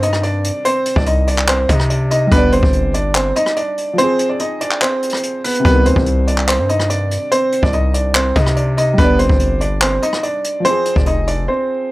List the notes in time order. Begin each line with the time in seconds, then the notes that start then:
Already playing: G2 C3 D#3 G3
0.02 D#4 D#5, closed hi-hat
0.13 cross-stick, closed hi-hat
0.23 D4 D5, closed hi-hat
0.44 closed hi-hat
0.65 C4 C5, closed hi-hat
0.85 closed hi-hat
0.96 C2 D4 D5, kick
1.06 D#4 D#5, closed hi-hat
1.27 D4 D5, closed hi-hat
1.38 clap
1.48 C4 C5, clap, closed hi-hat
1.69 C3 D#4 D#5, kick, closed hi-hat
1.80 cross-stick, closed hi-hat
1.90 D4 D5, closed hi-hat
2.11 D#4 D#5, closed hi-hat
2.27 G3
2.32 G1 B3 D4 B4, kick, closed hi-hat
2.37 D5
2.52 C4 C5, closed hi-hat
2.63 G1, kick
2.73 closed hi-hat
2.94 D4 D5, closed hi-hat
3.15 C4 C5, clap, closed hi-hat
3.36 D#4 D#5, closed hi-hat
3.46 cross-stick, closed hi-hat
3.56 D4 D5, closed hi-hat
3.78 closed hi-hat
3.93 F3
3.98 C4 C5, closed hi-hat
4.04 G#4
4.19 closed hi-hat
4.29 D4 D5
4.39 D#4 D#5, closed hi-hat
4.61 D4 D5, closed hi-hat
4.71 clap
4.82 C4 C5, clap, closed hi-hat
5.02 closed hi-hat
5.09 cross-stick, closed hi-hat
5.16 closed hi-hat
5.23 closed hi-hat
5.44 B3 B4, closed hi-hat, open hi-hat
5.55 closed hi-hat
5.60 C3
5.65 C2 G3 B3 B4, kick, closed hi-hat
5.70 D#3
5.86 D#2 C4 C5, closed hi-hat
5.96 C2, kick
6.06 closed hi-hat
6.27 D4 D5, closed hi-hat
6.38 clap
6.48 C4 C5, clap, closed hi-hat
6.59 G2
6.69 D#4 D#5, closed hi-hat
6.80 cross-stick, closed hi-hat
6.90 D4 D5, closed hi-hat
7.11 closed hi-hat
7.32 C4 C5, closed hi-hat
7.52 closed hi-hat
7.63 C2 D4 D5, kick
7.73 D#4 D#5, closed hi-hat
7.94 D4 D5, closed hi-hat
8.15 C4 C5, clap, closed hi-hat
8.36 C3 D#4 D#5, kick, closed hi-hat
8.46 cross-stick, closed hi-hat
8.56 D4 D5, closed hi-hat
8.77 D#4 D#5, closed hi-hat
8.94 G3
8.98 G1 B3 D4 B4, kick, closed hi-hat
9.04 D5
9.19 C4 C5, closed hi-hat
9.29 G1, kick
9.39 closed hi-hat
9.61 D4 D5, closed hi-hat
9.82 C4 C5, clap, closed hi-hat
10.02 D#4 D#5, closed hi-hat
10.13 cross-stick, closed hi-hat
10.23 D4 D5, closed hi-hat
10.44 closed hi-hat
10.60 F3
10.65 C4 C5, closed hi-hat
10.70 G#4
10.85 closed hi-hat
10.96 F1 D4 D5, kick
11.06 D#4 D#5, closed hi-hat
11.27 D4 D5, closed hi-hat
11.48 C4 C5